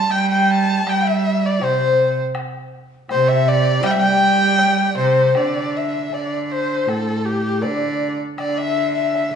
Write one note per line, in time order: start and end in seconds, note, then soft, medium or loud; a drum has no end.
0.00 1.62 G3 medium
0.00 0.10 A4 soft
0.00 0.12 A5 medium
0.10 0.83 G3 medium
0.10 0.27 G5 medium
0.10 0.30 G5 loud
0.10 high woodblock medium
0.27 0.82 G5 loud
0.27 0.52 G5 medium
0.50 0.91 A5 medium
0.85 1.63 G3 medium
0.85 1.06 G5 medium
0.85 1.09 G5 medium
0.85 high woodblock medium
1.04 1.43 E5 medium
1.04 1.47 E5 medium
1.42 1.62 D5 medium
1.42 1.66 D5 medium
1.60 2.17 C3 medium
1.60 2.17 C5 medium
1.60 high woodblock medium
1.64 2.19 C5 medium
2.35 high woodblock medium
3.09 3.84 C3 medium
3.09 3.31 C5 medium
3.09 3.30 C5 medium
3.09 high woodblock medium
3.28 3.50 E5 medium
3.28 3.49 E5 medium
3.48 3.86 D5 medium
3.48 3.87 D5 loud
3.83 3.97 G3 medium
3.83 6.12 G3 medium
3.83 3.95 G5 medium
3.83 3.92 G5 loud
3.83 high woodblock medium
3.91 4.01 E5 medium
3.96 4.93 G3 medium
3.96 4.86 G5 medium
3.96 4.97 G5 loud
4.58 low woodblock medium
4.90 5.00 D5 medium
4.97 5.37 C3 medium
4.97 5.39 C5 medium
4.97 5.40 C5 medium
5.35 6.12 D3 medium
5.35 5.78 D5 medium
5.35 5.79 D5 medium
5.35 high woodblock medium
5.76 6.15 E5 medium
5.76 6.16 E5 medium
6.13 6.88 D3 medium
6.13 6.45 D5 medium
6.13 6.54 D5 medium
6.13 low woodblock soft
6.45 6.53 D5 medium
6.51 6.89 C5 medium
6.51 6.83 C5 medium
6.83 6.90 C5 soft
6.87 7.65 A2 medium
6.87 7.27 A4 medium
6.87 7.19 A4 medium
6.87 high woodblock soft
7.22 7.64 G4 medium
7.22 7.30 A4 soft
7.29 7.68 G4 medium
7.62 8.19 D3 medium
7.62 8.18 D5 medium
7.62 8.20 D5 medium
7.62 low woodblock soft
8.38 9.29 D3 medium
8.38 8.59 D5 medium
8.38 high woodblock medium
8.57 8.94 E5 medium
8.94 9.35 E5 medium
9.14 low woodblock soft